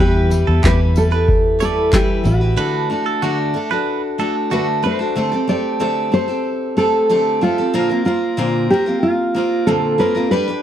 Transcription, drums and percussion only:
0.31 tambourine
0.64 kick, clap
0.96 tambourine
1.28 kick
1.60 tambourine
1.93 kick, clap
2.25 tambourine

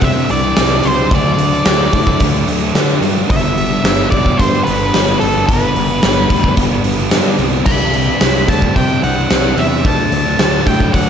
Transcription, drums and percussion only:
0.01 kick, open hi-hat
0.29 open hi-hat
0.56 snare, open hi-hat
0.84 open hi-hat
1.11 kick, open hi-hat
1.38 open hi-hat
1.65 snare, open hi-hat
1.93 kick, open hi-hat
2.07 kick
2.20 kick, open hi-hat
2.48 open hi-hat
2.75 snare, open hi-hat
3.03 open hi-hat
3.30 kick, open hi-hat
3.58 open hi-hat
3.85 snare, open hi-hat
4.12 kick, open hi-hat
4.26 kick
4.39 kick, open hi-hat
4.67 open hi-hat
4.94 snare, open hi-hat
5.21 open hi-hat
5.49 kick, open hi-hat
5.76 open hi-hat
6.03 snare, open hi-hat
6.30 kick, open hi-hat
6.44 kick
6.57 kick, open hi-hat
6.84 open hi-hat
7.11 snare, open hi-hat
7.39 open hi-hat
7.66 kick, crash
7.93 open hi-hat
8.21 snare, open hi-hat
8.48 kick, open hi-hat
8.62 kick
8.76 kick, open hi-hat
9.04 open hi-hat
9.30 snare, open hi-hat
9.58 open hi-hat
9.85 kick, open hi-hat
10.12 open hi-hat
10.39 snare, open hi-hat
10.66 kick, open hi-hat
10.80 kick
10.94 kick, open hi-hat

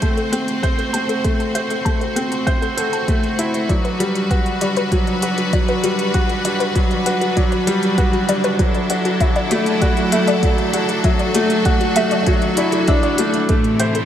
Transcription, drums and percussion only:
0.02 kick, closed hi-hat
0.17 closed hi-hat
0.33 closed hi-hat
0.48 closed hi-hat
0.63 kick, closed hi-hat
0.79 closed hi-hat
0.94 closed hi-hat
1.09 closed hi-hat
1.25 kick, closed hi-hat
1.40 closed hi-hat
1.55 closed hi-hat
1.70 closed hi-hat
1.86 kick, closed hi-hat
2.01 closed hi-hat
2.16 closed hi-hat
2.32 closed hi-hat
2.47 kick, closed hi-hat
2.62 closed hi-hat
2.78 closed hi-hat
2.93 closed hi-hat
3.08 kick, closed hi-hat
3.23 closed hi-hat
3.39 closed hi-hat
3.54 closed hi-hat
3.69 kick, closed hi-hat
3.85 closed hi-hat
4.00 closed hi-hat
4.15 closed hi-hat
4.31 kick, closed hi-hat
4.46 closed hi-hat
4.61 closed hi-hat
4.77 closed hi-hat
4.92 kick, closed hi-hat
5.07 closed hi-hat
5.22 closed hi-hat
5.38 closed hi-hat
5.53 kick, closed hi-hat
5.68 closed hi-hat
5.84 closed hi-hat
5.99 closed hi-hat
6.14 kick, closed hi-hat
6.29 closed hi-hat
6.45 closed hi-hat
6.60 closed hi-hat
6.76 kick, closed hi-hat
6.91 closed hi-hat
7.06 closed hi-hat
7.21 closed hi-hat
7.37 kick, closed hi-hat
7.52 closed hi-hat
7.67 closed hi-hat
7.83 closed hi-hat
7.98 kick, closed hi-hat
8.13 closed hi-hat
8.29 closed hi-hat
8.44 closed hi-hat
8.59 kick, closed hi-hat
8.75 closed hi-hat
8.90 closed hi-hat
9.05 closed hi-hat
9.20 kick, closed hi-hat
9.36 closed hi-hat
9.51 closed hi-hat
9.66 closed hi-hat
9.82 kick, closed hi-hat
9.97 closed hi-hat
10.12 closed hi-hat
10.28 closed hi-hat
10.43 kick, closed hi-hat
10.58 closed hi-hat
10.73 closed hi-hat
10.89 closed hi-hat
11.04 kick, closed hi-hat
11.19 closed hi-hat
11.35 closed hi-hat
11.50 closed hi-hat
11.65 kick, closed hi-hat
11.81 closed hi-hat
11.96 closed hi-hat
12.11 closed hi-hat
12.27 kick, closed hi-hat
12.42 closed hi-hat
12.57 closed hi-hat
12.72 closed hi-hat
12.88 kick, closed hi-hat
13.03 closed hi-hat
13.18 closed hi-hat
13.34 closed hi-hat
13.49 kick, closed hi-hat
13.64 closed hi-hat
13.80 closed hi-hat
13.95 closed hi-hat

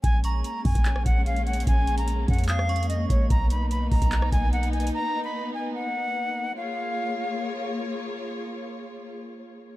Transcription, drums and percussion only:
0.04 kick, closed hi-hat
0.24 closed hi-hat
0.44 closed hi-hat
0.65 kick, closed hi-hat, open hi-hat
0.75 kick, closed hi-hat
0.85 clap, closed hi-hat
0.96 cross-stick
1.06 kick, closed hi-hat
1.26 closed hi-hat
1.36 closed hi-hat
1.47 closed hi-hat
1.53 closed hi-hat
1.60 closed hi-hat
1.67 kick, closed hi-hat
1.87 closed hi-hat
1.98 closed hi-hat
2.08 closed hi-hat
2.28 kick, closed hi-hat
2.33 closed hi-hat
2.38 closed hi-hat
2.44 closed hi-hat
2.49 clap, closed hi-hat
2.59 cross-stick
2.69 closed hi-hat
2.76 closed hi-hat
2.83 closed hi-hat
2.90 closed hi-hat
3.10 kick, closed hi-hat
3.30 kick, closed hi-hat
3.50 closed hi-hat
3.71 closed hi-hat
3.92 kick, closed hi-hat, open hi-hat
4.02 kick, closed hi-hat
4.12 clap, closed hi-hat
4.22 cross-stick
4.32 kick, closed hi-hat
4.53 closed hi-hat
4.63 closed hi-hat
4.73 closed hi-hat
4.80 closed hi-hat
4.87 closed hi-hat

